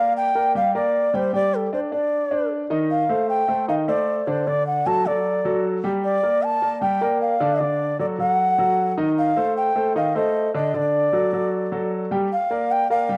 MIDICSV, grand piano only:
0, 0, Header, 1, 2, 480
1, 0, Start_track
1, 0, Key_signature, -2, "minor"
1, 0, Tempo, 392157
1, 1627, Time_signature, 4, 2, 24, 8
1, 16121, End_track
2, 0, Start_track
2, 0, Title_t, "Grand piano"
2, 0, Program_c, 0, 0
2, 0, Note_on_c, 0, 58, 70
2, 0, Note_on_c, 0, 70, 73
2, 0, Note_on_c, 0, 74, 69
2, 339, Note_off_c, 0, 58, 0
2, 342, Note_off_c, 0, 70, 0
2, 344, Note_off_c, 0, 74, 0
2, 430, Note_on_c, 0, 58, 61
2, 432, Note_on_c, 0, 70, 70
2, 437, Note_on_c, 0, 74, 64
2, 626, Note_off_c, 0, 58, 0
2, 627, Note_off_c, 0, 70, 0
2, 630, Note_off_c, 0, 74, 0
2, 671, Note_on_c, 0, 55, 69
2, 675, Note_on_c, 0, 67, 67
2, 677, Note_on_c, 0, 79, 74
2, 866, Note_off_c, 0, 55, 0
2, 868, Note_off_c, 0, 67, 0
2, 870, Note_off_c, 0, 79, 0
2, 915, Note_on_c, 0, 58, 68
2, 916, Note_on_c, 0, 70, 73
2, 921, Note_on_c, 0, 74, 72
2, 1305, Note_off_c, 0, 58, 0
2, 1306, Note_off_c, 0, 70, 0
2, 1309, Note_off_c, 0, 74, 0
2, 1390, Note_on_c, 0, 55, 77
2, 1394, Note_on_c, 0, 67, 68
2, 1398, Note_on_c, 0, 79, 76
2, 1586, Note_off_c, 0, 55, 0
2, 1588, Note_off_c, 0, 67, 0
2, 1590, Note_off_c, 0, 79, 0
2, 1628, Note_on_c, 0, 55, 65
2, 1634, Note_on_c, 0, 67, 63
2, 1637, Note_on_c, 0, 79, 67
2, 2021, Note_off_c, 0, 55, 0
2, 2024, Note_off_c, 0, 67, 0
2, 2026, Note_off_c, 0, 79, 0
2, 2113, Note_on_c, 0, 62, 65
2, 2116, Note_on_c, 0, 74, 68
2, 2307, Note_off_c, 0, 62, 0
2, 2309, Note_off_c, 0, 74, 0
2, 2348, Note_on_c, 0, 62, 66
2, 2353, Note_on_c, 0, 74, 62
2, 2741, Note_off_c, 0, 62, 0
2, 2744, Note_off_c, 0, 74, 0
2, 2828, Note_on_c, 0, 62, 75
2, 2832, Note_on_c, 0, 74, 64
2, 3221, Note_off_c, 0, 62, 0
2, 3223, Note_off_c, 0, 74, 0
2, 3305, Note_on_c, 0, 51, 80
2, 3310, Note_on_c, 0, 63, 78
2, 3313, Note_on_c, 0, 75, 80
2, 3699, Note_off_c, 0, 51, 0
2, 3702, Note_off_c, 0, 63, 0
2, 3703, Note_off_c, 0, 75, 0
2, 3786, Note_on_c, 0, 57, 70
2, 3788, Note_on_c, 0, 69, 62
2, 3793, Note_on_c, 0, 72, 70
2, 4179, Note_off_c, 0, 57, 0
2, 4181, Note_off_c, 0, 69, 0
2, 4184, Note_off_c, 0, 72, 0
2, 4263, Note_on_c, 0, 57, 71
2, 4266, Note_on_c, 0, 69, 63
2, 4270, Note_on_c, 0, 72, 63
2, 4461, Note_off_c, 0, 57, 0
2, 4462, Note_off_c, 0, 69, 0
2, 4465, Note_off_c, 0, 72, 0
2, 4505, Note_on_c, 0, 51, 67
2, 4510, Note_on_c, 0, 63, 72
2, 4514, Note_on_c, 0, 75, 76
2, 4702, Note_off_c, 0, 51, 0
2, 4705, Note_off_c, 0, 63, 0
2, 4707, Note_off_c, 0, 75, 0
2, 4749, Note_on_c, 0, 57, 73
2, 4752, Note_on_c, 0, 69, 66
2, 4756, Note_on_c, 0, 72, 73
2, 5141, Note_off_c, 0, 57, 0
2, 5143, Note_off_c, 0, 69, 0
2, 5145, Note_off_c, 0, 72, 0
2, 5227, Note_on_c, 0, 50, 75
2, 5232, Note_on_c, 0, 62, 76
2, 5234, Note_on_c, 0, 74, 75
2, 5423, Note_off_c, 0, 50, 0
2, 5426, Note_off_c, 0, 62, 0
2, 5427, Note_off_c, 0, 74, 0
2, 5469, Note_on_c, 0, 50, 60
2, 5473, Note_on_c, 0, 62, 62
2, 5478, Note_on_c, 0, 74, 64
2, 5861, Note_off_c, 0, 50, 0
2, 5863, Note_off_c, 0, 62, 0
2, 5866, Note_off_c, 0, 74, 0
2, 5951, Note_on_c, 0, 54, 71
2, 5955, Note_on_c, 0, 66, 67
2, 5959, Note_on_c, 0, 69, 66
2, 6145, Note_off_c, 0, 54, 0
2, 6147, Note_off_c, 0, 66, 0
2, 6149, Note_off_c, 0, 69, 0
2, 6191, Note_on_c, 0, 54, 68
2, 6194, Note_on_c, 0, 66, 57
2, 6198, Note_on_c, 0, 69, 66
2, 6581, Note_off_c, 0, 54, 0
2, 6583, Note_off_c, 0, 66, 0
2, 6586, Note_off_c, 0, 69, 0
2, 6670, Note_on_c, 0, 54, 76
2, 6674, Note_on_c, 0, 66, 67
2, 6677, Note_on_c, 0, 69, 71
2, 7061, Note_off_c, 0, 54, 0
2, 7063, Note_off_c, 0, 66, 0
2, 7064, Note_off_c, 0, 69, 0
2, 7146, Note_on_c, 0, 55, 78
2, 7151, Note_on_c, 0, 67, 75
2, 7154, Note_on_c, 0, 79, 72
2, 7538, Note_off_c, 0, 55, 0
2, 7541, Note_off_c, 0, 67, 0
2, 7543, Note_off_c, 0, 79, 0
2, 7627, Note_on_c, 0, 58, 71
2, 7631, Note_on_c, 0, 70, 63
2, 7636, Note_on_c, 0, 74, 67
2, 8019, Note_off_c, 0, 58, 0
2, 8021, Note_off_c, 0, 70, 0
2, 8024, Note_off_c, 0, 74, 0
2, 8103, Note_on_c, 0, 58, 60
2, 8104, Note_on_c, 0, 70, 62
2, 8108, Note_on_c, 0, 74, 67
2, 8299, Note_off_c, 0, 58, 0
2, 8300, Note_off_c, 0, 70, 0
2, 8303, Note_off_c, 0, 74, 0
2, 8341, Note_on_c, 0, 55, 78
2, 8345, Note_on_c, 0, 67, 75
2, 8346, Note_on_c, 0, 79, 66
2, 8538, Note_off_c, 0, 55, 0
2, 8540, Note_off_c, 0, 67, 0
2, 8541, Note_off_c, 0, 79, 0
2, 8583, Note_on_c, 0, 58, 77
2, 8588, Note_on_c, 0, 70, 71
2, 8590, Note_on_c, 0, 74, 75
2, 8976, Note_off_c, 0, 58, 0
2, 8979, Note_off_c, 0, 70, 0
2, 8980, Note_off_c, 0, 74, 0
2, 9062, Note_on_c, 0, 50, 83
2, 9067, Note_on_c, 0, 62, 81
2, 9070, Note_on_c, 0, 74, 83
2, 9258, Note_off_c, 0, 50, 0
2, 9261, Note_off_c, 0, 62, 0
2, 9263, Note_off_c, 0, 74, 0
2, 9305, Note_on_c, 0, 50, 60
2, 9307, Note_on_c, 0, 62, 62
2, 9312, Note_on_c, 0, 74, 66
2, 9697, Note_off_c, 0, 50, 0
2, 9698, Note_off_c, 0, 62, 0
2, 9701, Note_off_c, 0, 74, 0
2, 9784, Note_on_c, 0, 54, 66
2, 9787, Note_on_c, 0, 66, 64
2, 9790, Note_on_c, 0, 69, 62
2, 9979, Note_off_c, 0, 54, 0
2, 9981, Note_off_c, 0, 66, 0
2, 9983, Note_off_c, 0, 69, 0
2, 10021, Note_on_c, 0, 54, 56
2, 10027, Note_on_c, 0, 66, 59
2, 10029, Note_on_c, 0, 69, 59
2, 10414, Note_off_c, 0, 54, 0
2, 10418, Note_off_c, 0, 66, 0
2, 10419, Note_off_c, 0, 69, 0
2, 10504, Note_on_c, 0, 54, 74
2, 10508, Note_on_c, 0, 66, 73
2, 10512, Note_on_c, 0, 69, 64
2, 10897, Note_off_c, 0, 54, 0
2, 10899, Note_off_c, 0, 66, 0
2, 10901, Note_off_c, 0, 69, 0
2, 10984, Note_on_c, 0, 51, 78
2, 10985, Note_on_c, 0, 63, 88
2, 10990, Note_on_c, 0, 75, 85
2, 11376, Note_off_c, 0, 51, 0
2, 11377, Note_off_c, 0, 63, 0
2, 11380, Note_off_c, 0, 75, 0
2, 11462, Note_on_c, 0, 57, 63
2, 11467, Note_on_c, 0, 69, 69
2, 11468, Note_on_c, 0, 72, 73
2, 11855, Note_off_c, 0, 57, 0
2, 11858, Note_off_c, 0, 69, 0
2, 11859, Note_off_c, 0, 72, 0
2, 11941, Note_on_c, 0, 57, 68
2, 11943, Note_on_c, 0, 69, 70
2, 11948, Note_on_c, 0, 72, 66
2, 12138, Note_off_c, 0, 57, 0
2, 12139, Note_off_c, 0, 69, 0
2, 12142, Note_off_c, 0, 72, 0
2, 12182, Note_on_c, 0, 51, 74
2, 12187, Note_on_c, 0, 63, 75
2, 12192, Note_on_c, 0, 75, 78
2, 12379, Note_off_c, 0, 51, 0
2, 12381, Note_off_c, 0, 63, 0
2, 12384, Note_off_c, 0, 75, 0
2, 12424, Note_on_c, 0, 57, 69
2, 12428, Note_on_c, 0, 69, 69
2, 12431, Note_on_c, 0, 72, 75
2, 12816, Note_off_c, 0, 57, 0
2, 12819, Note_off_c, 0, 69, 0
2, 12821, Note_off_c, 0, 72, 0
2, 12905, Note_on_c, 0, 50, 82
2, 12908, Note_on_c, 0, 62, 84
2, 12910, Note_on_c, 0, 74, 74
2, 13100, Note_off_c, 0, 50, 0
2, 13102, Note_off_c, 0, 62, 0
2, 13103, Note_off_c, 0, 74, 0
2, 13144, Note_on_c, 0, 50, 72
2, 13146, Note_on_c, 0, 62, 66
2, 13150, Note_on_c, 0, 74, 64
2, 13536, Note_off_c, 0, 50, 0
2, 13538, Note_off_c, 0, 62, 0
2, 13540, Note_off_c, 0, 74, 0
2, 13619, Note_on_c, 0, 54, 70
2, 13623, Note_on_c, 0, 66, 67
2, 13628, Note_on_c, 0, 69, 61
2, 13817, Note_off_c, 0, 54, 0
2, 13819, Note_off_c, 0, 66, 0
2, 13822, Note_off_c, 0, 69, 0
2, 13864, Note_on_c, 0, 54, 63
2, 13867, Note_on_c, 0, 66, 62
2, 13871, Note_on_c, 0, 69, 61
2, 14257, Note_off_c, 0, 54, 0
2, 14259, Note_off_c, 0, 66, 0
2, 14261, Note_off_c, 0, 69, 0
2, 14342, Note_on_c, 0, 54, 73
2, 14345, Note_on_c, 0, 66, 66
2, 14350, Note_on_c, 0, 69, 73
2, 14736, Note_off_c, 0, 54, 0
2, 14738, Note_off_c, 0, 66, 0
2, 14741, Note_off_c, 0, 69, 0
2, 14824, Note_on_c, 0, 55, 81
2, 14829, Note_on_c, 0, 67, 77
2, 14833, Note_on_c, 0, 79, 77
2, 15020, Note_off_c, 0, 55, 0
2, 15023, Note_off_c, 0, 67, 0
2, 15025, Note_off_c, 0, 79, 0
2, 15305, Note_on_c, 0, 58, 73
2, 15307, Note_on_c, 0, 70, 63
2, 15312, Note_on_c, 0, 74, 70
2, 15698, Note_off_c, 0, 58, 0
2, 15699, Note_off_c, 0, 70, 0
2, 15702, Note_off_c, 0, 74, 0
2, 15791, Note_on_c, 0, 58, 66
2, 15793, Note_on_c, 0, 70, 70
2, 15795, Note_on_c, 0, 74, 65
2, 15984, Note_off_c, 0, 58, 0
2, 15986, Note_off_c, 0, 70, 0
2, 15987, Note_off_c, 0, 74, 0
2, 16023, Note_on_c, 0, 55, 74
2, 16027, Note_on_c, 0, 67, 81
2, 16031, Note_on_c, 0, 79, 73
2, 16121, Note_off_c, 0, 55, 0
2, 16121, Note_off_c, 0, 67, 0
2, 16121, Note_off_c, 0, 79, 0
2, 16121, End_track
0, 0, End_of_file